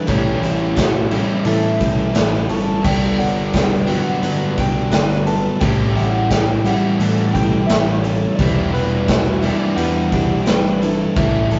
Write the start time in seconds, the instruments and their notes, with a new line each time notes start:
Already playing: clean electric guitar G3, distorted electric guitar G3
0.07 picked electric bass A1, overdriven electric guitar A2 E3 G3 C#4, clean electric guitar A2, distorted electric guitar A2, twelve-string acoustic guitar G4, soft synth lead C#5, kick, open hi-hat
0.11 overdriven electric guitar E4
0.41 distorted electric guitar E3, clean electric guitar E4, open hi-hat
0.76 distorted electric guitar E3, clean electric guitar C#4, twelve-string acoustic guitar F#4, kick, snare, open hi-hat, tambourine
1.10 overdriven electric guitar E3 G3 C#4 E4, distorted electric guitar G3, clean electric guitar G3, twelve-string acoustic guitar G4, open hi-hat
1.14 overdriven electric guitar A2
1.45 picked electric bass A2, distorted electric guitar E3, clean electric guitar E3, twelve-string acoustic guitar A4, soft synth lead E5, open hi-hat
1.79 clean electric guitar G3, distorted electric guitar C#4, twelve-string acoustic guitar G4, kick, open hi-hat
2.14 picked electric bass A1, distorted electric guitar E3, clean electric guitar E4, twelve-string acoustic guitar B4, snare, open hi-hat, tambourine
2.34 snare
2.49 picked electric bass G1, distorted electric guitar G3, clean electric guitar C#4, twelve-string acoustic guitar A4, soft synth lead A5, open hi-hat
2.82 picked electric bass G1, overdriven electric guitar G2 D3 G3 B3 D4, distorted electric guitar G2, clean electric guitar G2, twelve-string acoustic guitar G4, soft synth lead G5, kick, crash
3.18 distorted electric guitar D3, clean electric guitar D4, soft synth lead F#5, open hi-hat
3.52 distorted electric guitar D3, clean electric guitar B3, twelve-string acoustic guitar G4, soft synth lead G5, kick, snare, open hi-hat, tambourine
3.87 overdriven electric guitar G2 D3 B3 D4, clean electric guitar F#3, distorted electric guitar F#3, twelve-string acoustic guitar F#4, soft synth lead F#5, open hi-hat
4.21 picked electric bass G2, clean electric guitar D3, distorted electric guitar D3, twelve-string acoustic guitar B4, open hi-hat
4.56 clean electric guitar F#3, distorted electric guitar B3, twelve-string acoustic guitar G5, soft synth lead G5, kick, open hi-hat
4.91 picked electric bass G1, distorted electric guitar D3, clean electric guitar D4, twelve-string acoustic guitar B4, soft synth lead D5, snare, open hi-hat, tambourine
5.11 snare
5.26 distorted electric guitar F#3, clean electric guitar B3, twelve-string acoustic guitar A4, soft synth lead A5, open hi-hat
5.60 picked electric bass A1, distorted electric guitar A2, clean electric guitar A2, overdriven electric guitar A2 E3 G3 C#4 E4, twelve-string acoustic guitar G4, soft synth lead G5, kick, open hi-hat
5.94 distorted electric guitar E3, clean electric guitar E4, soft synth lead F#5, open hi-hat
6.29 distorted electric guitar E3, clean electric guitar C#4, twelve-string acoustic guitar G4, soft synth lead G5, kick, snare, open hi-hat, tambourine
6.64 distorted electric guitar G3, clean electric guitar G3, overdriven electric guitar G3 C#4 E4, twelve-string acoustic guitar G4, soft synth lead F#5, open hi-hat
6.68 overdriven electric guitar A2 E3
6.98 picked electric bass A2, distorted electric guitar E3, clean electric guitar E3, twelve-string acoustic guitar A4, open hi-hat
7.32 clean electric guitar G3, distorted electric guitar C#4, soft synth lead G5, kick, open hi-hat
7.36 twelve-string acoustic guitar G4
7.66 picked electric bass A1, distorted electric guitar E3, clean electric guitar E4, twelve-string acoustic guitar B4, soft synth lead E5, snare, open hi-hat, tambourine
7.88 snare
7.99 distorted electric guitar G3, soft synth lead C#5
8.03 clean electric guitar C#4, twelve-string acoustic guitar A4, open hi-hat
8.36 picked electric bass E1, distorted electric guitar E3, overdriven electric guitar E3 G3, clean electric guitar E3, twelve-string acoustic guitar G4, soft synth lead D5, kick, open hi-hat
8.41 overdriven electric guitar B3 E4
8.72 distorted electric guitar G3, clean electric guitar B4, open hi-hat
9.07 distorted electric guitar G3, clean electric guitar E4, twelve-string acoustic guitar F#4, kick, snare, open hi-hat, tambourine
9.42 overdriven electric guitar E3 G3 B3 E4, distorted electric guitar D4, clean electric guitar D4, twelve-string acoustic guitar G4, open hi-hat
9.76 picked electric bass E2, distorted electric guitar G3, clean electric guitar G3, twelve-string acoustic guitar B4, soft synth lead F#5, open hi-hat
10.12 clean electric guitar D4, distorted electric guitar E4, twelve-string acoustic guitar G4, kick, open hi-hat
10.44 picked electric bass G1, distorted electric guitar G3, twelve-string acoustic guitar B4, clean electric guitar B4, soft synth lead G5, snare, open hi-hat, tambourine
10.65 snare
10.80 distorted electric guitar D4, clean electric guitar E4, twelve-string acoustic guitar A4, soft synth lead D5, open hi-hat
11.16 picked electric bass A1, overdriven electric guitar A2 E3 G3 C#4 E4, distorted electric guitar A2, clean electric guitar A2, twelve-string acoustic guitar G4, soft synth lead E5, kick, open hi-hat
11.51 distorted electric guitar E3, clean electric guitar A4, open hi-hat